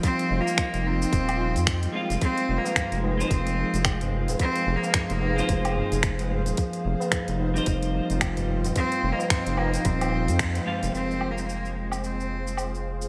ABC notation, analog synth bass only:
X:1
M:4/4
L:1/16
Q:"Swing 16ths" 1/4=110
K:Fm
V:1 name="Analog synth bass" clef=bass
z2 F,,, z2 F,,,2 z E,,,3 F,,2 z2 F,,, | z2 F,,, z2 F,,,2 z F,,,2 z F,,,4 E,,, | z2 F,,, z2 F,,,2 z F,,,2 z F,,,4 E,,, | z2 F,,, z2 F,,,2 z F,,,2 z F,,,4 E,,, |
z2 F,,, z2 F,,,2 z E,,,3 F,,2 z2 F,,, | F,,,16 |]